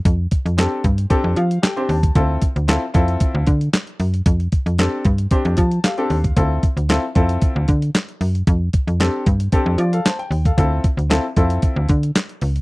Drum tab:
HH |x-xxx-xxx-xxxxox|x-xxx-xxx-xxxxox|xxxxx-xxxxxxxxox|x-xxx-xxx-xxxxox|
CP |----x-------x---|----x-------x---|----x-------x---|----x-------x---|
SD |----o-------o---|----o-------o---|----o-------o---|----o-------o---|
BD |o-o---o-o------o|o-o---o-o-o-----|o-o---o-o-o----o|o-o---o-o-o-----|

HH |x-xxx-xxx-xxxxox|x-xxx-xxx-xxxxox|
CP |----x-------x---|----x-------x---|
SD |----o-------o---|----o-------o---|
BD |o-o---o-o------o|o-o---o-o-o-----|